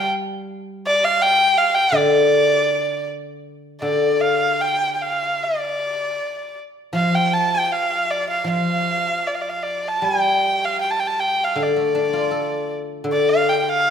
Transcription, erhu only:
0.87 1.06 D5 medium
1.04 1.23 F5 medium
1.21 1.59 G5 medium
1.58 1.76 F5 medium
1.75 1.97 G5 medium
1.95 3.07 D5 medium
3.82 4.22 D5 medium
4.21 4.63 F5 medium
4.61 4.94 G5 medium
4.94 5.03 G5 medium
5.02 5.44 F5 medium
5.43 6.57 D5 medium
6.95 7.16 F5 medium
7.14 7.35 G5 medium
7.33 7.56 A5 medium
7.55 7.65 G5 medium
7.65 7.74 G5 medium
7.72 8.12 F5 medium
8.11 8.29 D5 medium
8.30 8.47 F5 medium
8.51 9.29 F5 medium
9.27 9.36 D5 soft
9.35 9.43 F5 medium
9.42 9.51 D5 soft
9.49 9.64 F5 medium
9.63 9.90 D5 medium
9.88 10.06 A5 medium
10.05 10.66 G5 medium
10.65 10.81 F5 medium
10.81 10.92 G5 medium
10.91 11.01 A5 medium
11.00 11.09 G5 medium
11.07 11.21 A5 medium
11.20 11.46 G5 medium
11.44 11.65 F5 medium
11.63 12.73 D5 medium
13.12 13.31 D5 medium
13.30 13.50 F5 medium
13.49 13.59 G5 medium
13.59 13.71 G5 medium
13.69 13.90 F5 medium

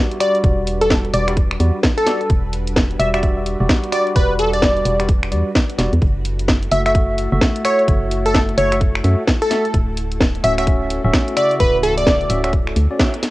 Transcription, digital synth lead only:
0.21 0.38 D5 medium
0.81 0.96 A4 medium
1.14 1.31 D5 medium
1.97 2.30 A4 medium
2.99 3.09 E5 medium
3.14 3.20 E5 medium
3.92 4.10 D5 loud
4.16 4.33 B4 medium
4.39 4.51 A4 medium
4.54 5.00 D5 medium
6.72 6.81 E5 medium
6.86 6.92 E5 medium
7.65 7.82 C#5 loud
8.26 8.40 A4 medium
8.58 8.75 C#5 medium
9.42 9.74 A4 loud
10.44 10.53 E5 medium
10.58 10.64 E5 medium
11.37 11.54 D5 medium
11.60 11.78 B4 loud
11.83 11.95 A4 medium
11.97 12.44 D5 medium

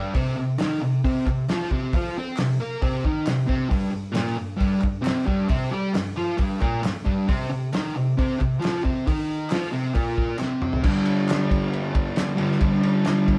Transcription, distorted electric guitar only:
0.00 0.13 G2 medium
0.00 0.14 G3 medium
0.14 0.35 C3 medium
0.14 0.37 C4 loud
0.37 0.55 C3 medium
0.58 0.81 D#3 medium
0.58 0.81 D#4 loud
0.81 0.99 C3 medium
1.04 1.25 C3 loud
1.04 1.26 C4 loud
1.26 1.44 C3 medium
1.49 1.71 F3 medium
1.49 1.71 F4 loud
1.71 1.93 C3 medium
1.71 1.93 C4 loud
1.94 2.16 F3 medium
1.94 2.17 F4 loud
2.18 2.38 C4 medium
2.18 2.39 C5 loud
2.38 2.56 C3 medium
2.60 2.82 A#3 medium
2.60 2.83 A#4 medium
2.81 3.04 C3 medium
2.81 3.04 C4 loud
3.04 3.26 D#3 loud
3.04 3.27 D#4 loud
3.26 3.45 C3 medium
3.47 3.70 C3 medium
3.47 3.71 C4 medium
3.68 3.90 G2 medium
3.68 3.92 G3 loud
3.91 4.11 G2 medium
4.12 4.36 A#2 medium
4.12 4.37 A#3 loud
4.36 4.55 G2 medium
4.57 4.79 G2 medium
4.57 4.81 G3 loud
4.80 5.00 G2 medium
5.02 5.26 C3 medium
5.02 5.26 C4 loud
5.26 5.49 G2 medium
5.26 5.49 G3 medium
5.48 5.71 C3 loud
5.48 5.72 C4 loud
5.71 5.93 G3 loud
5.71 5.94 G4 loud
5.93 6.12 G2 medium
6.16 6.38 F3 medium
6.16 6.39 F4 medium
6.37 6.60 G2 loud
6.37 6.60 G3 loud
6.59 6.82 A#2 medium
6.59 6.83 A#3 loud
6.82 7.01 G2 medium
7.05 7.27 G2 medium
7.05 7.27 G3 loud
7.27 7.49 C3 loud
7.27 7.50 C4 loud
7.50 7.68 C3 medium
7.72 7.94 D#3 loud
7.72 7.95 D#4 loud
7.95 8.13 C3 medium
8.17 8.38 C3 loud
8.17 8.40 C4 loud
8.39 8.57 C3 medium
8.59 8.82 F3 loud
8.59 8.83 F4 loud
8.83 9.05 C3 medium
8.83 9.06 C4 loud
9.07 9.50 D#3 medium
9.07 9.51 D#4 loud
9.51 9.72 F3 loud
9.51 9.72 F4 medium
9.72 9.94 C3 medium
9.72 9.94 C4 loud
9.94 10.38 A#2 medium
9.94 10.39 A#3 loud
10.38 10.83 C3 loud
10.38 10.83 C4 loud
10.82 12.37 G2 medium
10.82 12.38 D3 medium
10.87 12.36 G3 medium
12.36 12.59 D3 medium
12.36 12.63 G3 medium
12.41 12.58 G2 medium
12.60 13.38 G2 medium
12.60 13.38 D3 loud
12.64 13.38 G3 loud

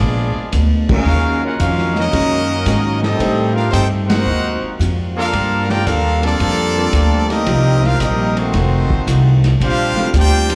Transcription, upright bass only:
0.00 0.33 A#1 loud
0.36 muted upright bass stroke soft
0.53 1.05 D2 loud
1.05 1.57 D#2 medium
1.60 2.11 F2 loud
2.13 2.65 F#2 loud
2.66 3.18 G#2 loud
3.19 3.71 A2 medium
3.73 4.25 G2 loud
4.26 4.60 D#2 loud
4.62 muted upright bass stroke soft
4.79 5.31 F2 loud
5.33 5.85 G2 medium
5.87 6.38 D#2 loud
6.40 6.92 F2 loud
6.93 7.45 D2 loud
7.47 7.98 C2 medium
8.00 8.52 A#1 loud
8.53 8.87 F1 loud
8.90 muted upright bass stroke soft
9.07 9.58 C2 loud
9.60 9.94 A#1 medium
9.96 muted upright bass stroke soft
10.13 10.55 D2 loud

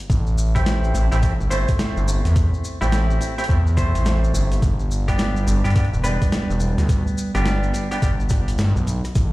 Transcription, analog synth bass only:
0.10 0.93 A1 medium
0.94 1.09 A1 medium
1.12 1.38 A1 medium
1.40 1.66 G1 medium
1.97 2.23 G1 loud
2.25 2.51 E2 loud
2.82 3.19 A1 loud
3.49 3.92 E2 medium
3.95 4.32 A1 loud
4.34 4.61 G1 loud
4.62 5.46 G1 loud
5.47 5.62 G1 loud
5.65 5.90 G2 medium
5.94 6.19 E1 medium
6.50 6.75 E1 medium
6.78 7.04 D2 loud
7.35 7.72 G1 loud
8.02 8.57 G1 loud
8.59 8.73 G2 medium
8.76 9.02 B1 medium
9.16 9.33 A1 loud

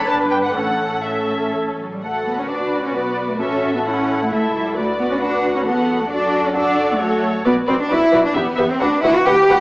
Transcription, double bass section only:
0.08 0.56 G1 soft
0.55 1.79 A1 soft
2.03 2.90 D2 soft
2.94 3.39 B1 soft
3.40 4.31 A1 soft
4.31 4.76 C#2 soft
4.76 5.64 D2 soft
5.66 6.11 E2 soft
6.11 7.43 F#2 medium
7.45 7.53 B1 medium
7.68 7.76 B1 medium
7.91 7.99 B1 medium
8.13 8.21 B1 medium
8.35 8.43 E2 medium
8.57 8.65 E2 medium
8.80 8.88 D2 medium
9.03 9.11 D2 medium
9.26 9.34 D2 medium
9.49 9.57 D2 medium

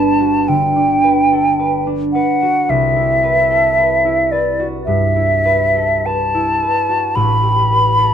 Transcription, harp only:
0.00 2.14 G1 medium
0.00 2.15 G2 medium
0.00 1.86 B3 soft
0.00 0.75 D4 soft
0.00 1.02 B4 soft
0.20 2.41 F#4 soft
0.48 2.73 D3 soft
0.76 1.85 D4 soft
1.03 1.58 B4 soft
1.32 1.79 A4 soft
1.59 2.14 B4 soft
1.87 2.73 D4 soft
2.15 3.23 B4 soft
2.42 4.58 F#4 soft
2.69 6.59 C2 medium
2.96 4.04 E4 soft
3.24 3.77 B4 soft
3.50 3.96 A4 soft
3.78 4.31 B4 soft
4.05 5.15 E4 soft
4.32 5.44 B4 soft
4.59 6.88 F#4 soft
4.87 7.20 G2 soft
5.16 6.33 E4 soft
5.45 6.04 B4 soft
5.76 6.25 A4 soft
6.06 6.61 B4 soft
6.35 8.14 E4 soft
6.63 7.70 B4 soft
6.89 7.20 F#4 soft
7.16 8.14 A1 medium
7.16 8.14 A2 medium
7.43 8.14 G4 soft
7.71 8.14 B4 soft
7.98 8.14 A4 soft

